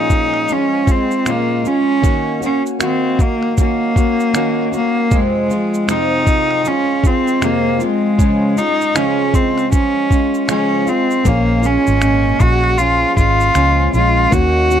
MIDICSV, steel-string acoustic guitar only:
0, 0, Header, 1, 2, 480
1, 0, Start_track
1, 0, Tempo, 768246
1, 1270, Time_signature, 4, 2, 24, 8
1, 9247, End_track
2, 0, Start_track
2, 0, Title_t, "Steel-string acoustic guitar"
2, 0, Program_c, 0, 25
2, 0, Note_on_c, 0, 46, 62
2, 0, Note_on_c, 0, 53, 68
2, 0, Note_on_c, 0, 56, 69
2, 0, Note_on_c, 0, 61, 74
2, 0, Note_on_c, 0, 65, 78
2, 295, Note_off_c, 0, 53, 0
2, 302, Note_off_c, 0, 46, 0
2, 302, Note_off_c, 0, 56, 0
2, 302, Note_on_c, 0, 53, 48
2, 308, Note_off_c, 0, 65, 0
2, 309, Note_on_c, 0, 56, 53
2, 310, Note_off_c, 0, 61, 0
2, 313, Note_on_c, 0, 61, 49
2, 318, Note_on_c, 0, 65, 60
2, 530, Note_off_c, 0, 65, 0
2, 537, Note_on_c, 0, 65, 46
2, 545, Note_off_c, 0, 53, 0
2, 546, Note_off_c, 0, 56, 0
2, 551, Note_off_c, 0, 61, 0
2, 554, Note_on_c, 0, 56, 41
2, 781, Note_off_c, 0, 56, 0
2, 781, Note_on_c, 0, 46, 64
2, 783, Note_off_c, 0, 65, 0
2, 784, Note_on_c, 0, 53, 64
2, 789, Note_on_c, 0, 56, 69
2, 791, Note_on_c, 0, 61, 65
2, 792, Note_on_c, 0, 65, 71
2, 1017, Note_off_c, 0, 65, 0
2, 1025, Note_on_c, 0, 65, 46
2, 1026, Note_off_c, 0, 46, 0
2, 1027, Note_off_c, 0, 53, 0
2, 1027, Note_off_c, 0, 61, 0
2, 1029, Note_off_c, 0, 56, 0
2, 1034, Note_on_c, 0, 61, 46
2, 1042, Note_on_c, 0, 56, 40
2, 1261, Note_off_c, 0, 61, 0
2, 1261, Note_on_c, 0, 51, 63
2, 1263, Note_off_c, 0, 56, 0
2, 1265, Note_on_c, 0, 58, 64
2, 1268, Note_off_c, 0, 65, 0
2, 1269, Note_on_c, 0, 61, 67
2, 1273, Note_on_c, 0, 66, 78
2, 1494, Note_off_c, 0, 66, 0
2, 1501, Note_off_c, 0, 61, 0
2, 1502, Note_on_c, 0, 66, 46
2, 1506, Note_off_c, 0, 51, 0
2, 1508, Note_off_c, 0, 58, 0
2, 1508, Note_on_c, 0, 61, 42
2, 1517, Note_on_c, 0, 58, 40
2, 1739, Note_off_c, 0, 58, 0
2, 1744, Note_on_c, 0, 51, 64
2, 1746, Note_on_c, 0, 58, 71
2, 1747, Note_off_c, 0, 66, 0
2, 1750, Note_off_c, 0, 61, 0
2, 1754, Note_on_c, 0, 66, 76
2, 2220, Note_off_c, 0, 51, 0
2, 2227, Note_off_c, 0, 58, 0
2, 2227, Note_on_c, 0, 51, 53
2, 2234, Note_off_c, 0, 66, 0
2, 2234, Note_on_c, 0, 58, 56
2, 2238, Note_on_c, 0, 61, 53
2, 2241, Note_on_c, 0, 66, 60
2, 2459, Note_off_c, 0, 66, 0
2, 2466, Note_off_c, 0, 61, 0
2, 2467, Note_on_c, 0, 66, 46
2, 2471, Note_off_c, 0, 51, 0
2, 2474, Note_off_c, 0, 58, 0
2, 2474, Note_on_c, 0, 61, 40
2, 2483, Note_on_c, 0, 58, 39
2, 2703, Note_off_c, 0, 58, 0
2, 2706, Note_off_c, 0, 61, 0
2, 2707, Note_on_c, 0, 51, 65
2, 2710, Note_off_c, 0, 66, 0
2, 2710, Note_on_c, 0, 58, 68
2, 2714, Note_on_c, 0, 61, 76
2, 2718, Note_on_c, 0, 66, 70
2, 2938, Note_off_c, 0, 66, 0
2, 2946, Note_off_c, 0, 61, 0
2, 2946, Note_on_c, 0, 66, 49
2, 2951, Note_off_c, 0, 51, 0
2, 2952, Note_off_c, 0, 58, 0
2, 2954, Note_on_c, 0, 61, 46
2, 2962, Note_on_c, 0, 58, 39
2, 3187, Note_on_c, 0, 41, 68
2, 3189, Note_on_c, 0, 48, 59
2, 3190, Note_off_c, 0, 66, 0
2, 3192, Note_off_c, 0, 58, 0
2, 3193, Note_on_c, 0, 53, 69
2, 3194, Note_off_c, 0, 61, 0
2, 3194, Note_on_c, 0, 56, 71
2, 3198, Note_on_c, 0, 60, 72
2, 3199, Note_on_c, 0, 65, 73
2, 3418, Note_off_c, 0, 65, 0
2, 3426, Note_off_c, 0, 60, 0
2, 3426, Note_on_c, 0, 65, 47
2, 3431, Note_off_c, 0, 41, 0
2, 3431, Note_off_c, 0, 56, 0
2, 3432, Note_off_c, 0, 48, 0
2, 3434, Note_off_c, 0, 53, 0
2, 3434, Note_on_c, 0, 60, 45
2, 3438, Note_on_c, 0, 56, 43
2, 3443, Note_on_c, 0, 53, 41
2, 3663, Note_off_c, 0, 53, 0
2, 3665, Note_off_c, 0, 56, 0
2, 3666, Note_on_c, 0, 41, 72
2, 3668, Note_off_c, 0, 60, 0
2, 3668, Note_off_c, 0, 65, 0
2, 3668, Note_on_c, 0, 48, 64
2, 3670, Note_on_c, 0, 53, 62
2, 3673, Note_on_c, 0, 56, 74
2, 3675, Note_on_c, 0, 60, 80
2, 3675, Note_on_c, 0, 65, 79
2, 4146, Note_off_c, 0, 53, 0
2, 4149, Note_on_c, 0, 53, 52
2, 4151, Note_off_c, 0, 41, 0
2, 4151, Note_off_c, 0, 56, 0
2, 4152, Note_off_c, 0, 48, 0
2, 4153, Note_on_c, 0, 56, 53
2, 4156, Note_off_c, 0, 60, 0
2, 4164, Note_off_c, 0, 65, 0
2, 4167, Note_on_c, 0, 65, 55
2, 4383, Note_off_c, 0, 65, 0
2, 4391, Note_on_c, 0, 65, 48
2, 4392, Note_off_c, 0, 53, 0
2, 4395, Note_off_c, 0, 56, 0
2, 4396, Note_on_c, 0, 60, 42
2, 4402, Note_on_c, 0, 56, 42
2, 4406, Note_on_c, 0, 53, 35
2, 4626, Note_on_c, 0, 41, 63
2, 4627, Note_off_c, 0, 53, 0
2, 4628, Note_off_c, 0, 56, 0
2, 4629, Note_on_c, 0, 48, 68
2, 4632, Note_off_c, 0, 60, 0
2, 4633, Note_off_c, 0, 65, 0
2, 4635, Note_on_c, 0, 53, 68
2, 4636, Note_on_c, 0, 56, 69
2, 4639, Note_on_c, 0, 60, 75
2, 4642, Note_on_c, 0, 65, 68
2, 4857, Note_off_c, 0, 65, 0
2, 4865, Note_off_c, 0, 60, 0
2, 4865, Note_on_c, 0, 65, 48
2, 4868, Note_off_c, 0, 56, 0
2, 4871, Note_off_c, 0, 41, 0
2, 4872, Note_off_c, 0, 48, 0
2, 4873, Note_on_c, 0, 60, 43
2, 4875, Note_off_c, 0, 53, 0
2, 4875, Note_on_c, 0, 56, 43
2, 4883, Note_on_c, 0, 53, 41
2, 5104, Note_off_c, 0, 53, 0
2, 5106, Note_off_c, 0, 56, 0
2, 5107, Note_on_c, 0, 49, 62
2, 5110, Note_off_c, 0, 65, 0
2, 5112, Note_on_c, 0, 53, 69
2, 5114, Note_off_c, 0, 60, 0
2, 5114, Note_on_c, 0, 56, 62
2, 5117, Note_on_c, 0, 61, 71
2, 5117, Note_on_c, 0, 65, 72
2, 5341, Note_off_c, 0, 65, 0
2, 5348, Note_off_c, 0, 61, 0
2, 5348, Note_on_c, 0, 65, 43
2, 5351, Note_off_c, 0, 49, 0
2, 5354, Note_off_c, 0, 53, 0
2, 5355, Note_off_c, 0, 56, 0
2, 5355, Note_on_c, 0, 61, 40
2, 5362, Note_on_c, 0, 56, 39
2, 5586, Note_off_c, 0, 56, 0
2, 5587, Note_on_c, 0, 49, 65
2, 5590, Note_on_c, 0, 53, 70
2, 5592, Note_off_c, 0, 65, 0
2, 5593, Note_on_c, 0, 56, 72
2, 5595, Note_off_c, 0, 61, 0
2, 5601, Note_on_c, 0, 65, 69
2, 6061, Note_off_c, 0, 53, 0
2, 6063, Note_on_c, 0, 53, 52
2, 6067, Note_off_c, 0, 56, 0
2, 6070, Note_on_c, 0, 56, 55
2, 6071, Note_off_c, 0, 49, 0
2, 6073, Note_on_c, 0, 61, 52
2, 6079, Note_off_c, 0, 65, 0
2, 6082, Note_on_c, 0, 65, 56
2, 6301, Note_off_c, 0, 65, 0
2, 6308, Note_on_c, 0, 65, 42
2, 6309, Note_off_c, 0, 53, 0
2, 6311, Note_off_c, 0, 61, 0
2, 6312, Note_off_c, 0, 56, 0
2, 6318, Note_on_c, 0, 61, 42
2, 6326, Note_on_c, 0, 56, 39
2, 6545, Note_off_c, 0, 56, 0
2, 6546, Note_on_c, 0, 49, 59
2, 6548, Note_on_c, 0, 53, 70
2, 6549, Note_off_c, 0, 61, 0
2, 6550, Note_off_c, 0, 65, 0
2, 6552, Note_on_c, 0, 56, 63
2, 6557, Note_on_c, 0, 61, 68
2, 6557, Note_on_c, 0, 65, 66
2, 6777, Note_off_c, 0, 65, 0
2, 6784, Note_on_c, 0, 65, 46
2, 6790, Note_off_c, 0, 49, 0
2, 6791, Note_off_c, 0, 53, 0
2, 6793, Note_off_c, 0, 56, 0
2, 6795, Note_off_c, 0, 61, 0
2, 6802, Note_on_c, 0, 56, 41
2, 7023, Note_off_c, 0, 56, 0
2, 7024, Note_on_c, 0, 46, 63
2, 7028, Note_off_c, 0, 65, 0
2, 7028, Note_on_c, 0, 53, 63
2, 7031, Note_on_c, 0, 56, 63
2, 7032, Note_on_c, 0, 61, 70
2, 7035, Note_on_c, 0, 65, 75
2, 7254, Note_off_c, 0, 65, 0
2, 7262, Note_on_c, 0, 65, 49
2, 7265, Note_off_c, 0, 61, 0
2, 7269, Note_off_c, 0, 46, 0
2, 7271, Note_off_c, 0, 53, 0
2, 7272, Note_off_c, 0, 56, 0
2, 7273, Note_on_c, 0, 61, 40
2, 7279, Note_on_c, 0, 56, 39
2, 7500, Note_off_c, 0, 56, 0
2, 7500, Note_on_c, 0, 46, 69
2, 7502, Note_off_c, 0, 61, 0
2, 7507, Note_off_c, 0, 65, 0
2, 7508, Note_on_c, 0, 56, 66
2, 7509, Note_on_c, 0, 61, 67
2, 7979, Note_off_c, 0, 56, 0
2, 7981, Note_on_c, 0, 53, 56
2, 7986, Note_off_c, 0, 46, 0
2, 7986, Note_on_c, 0, 56, 53
2, 7990, Note_off_c, 0, 61, 0
2, 7992, Note_on_c, 0, 61, 60
2, 7997, Note_on_c, 0, 65, 54
2, 8213, Note_off_c, 0, 65, 0
2, 8221, Note_off_c, 0, 61, 0
2, 8221, Note_on_c, 0, 65, 49
2, 8226, Note_off_c, 0, 53, 0
2, 8229, Note_off_c, 0, 56, 0
2, 8229, Note_on_c, 0, 61, 44
2, 8237, Note_on_c, 0, 56, 40
2, 8459, Note_off_c, 0, 56, 0
2, 8460, Note_off_c, 0, 61, 0
2, 8461, Note_on_c, 0, 46, 64
2, 8462, Note_off_c, 0, 65, 0
2, 8463, Note_on_c, 0, 53, 67
2, 8466, Note_on_c, 0, 56, 64
2, 8468, Note_on_c, 0, 61, 66
2, 8469, Note_on_c, 0, 65, 68
2, 8696, Note_off_c, 0, 65, 0
2, 8704, Note_on_c, 0, 65, 44
2, 8706, Note_off_c, 0, 46, 0
2, 8707, Note_off_c, 0, 53, 0
2, 8707, Note_off_c, 0, 61, 0
2, 8708, Note_off_c, 0, 56, 0
2, 8715, Note_on_c, 0, 61, 46
2, 8718, Note_on_c, 0, 56, 44
2, 8944, Note_on_c, 0, 51, 61
2, 8945, Note_off_c, 0, 61, 0
2, 8947, Note_off_c, 0, 65, 0
2, 8948, Note_off_c, 0, 56, 0
2, 8950, Note_on_c, 0, 58, 63
2, 8952, Note_on_c, 0, 61, 64
2, 8956, Note_on_c, 0, 66, 68
2, 9170, Note_off_c, 0, 66, 0
2, 9177, Note_on_c, 0, 66, 44
2, 9180, Note_off_c, 0, 61, 0
2, 9186, Note_off_c, 0, 58, 0
2, 9187, Note_off_c, 0, 51, 0
2, 9187, Note_on_c, 0, 61, 45
2, 9193, Note_on_c, 0, 58, 42
2, 9247, Note_off_c, 0, 58, 0
2, 9247, Note_off_c, 0, 61, 0
2, 9247, Note_off_c, 0, 66, 0
2, 9247, End_track
0, 0, End_of_file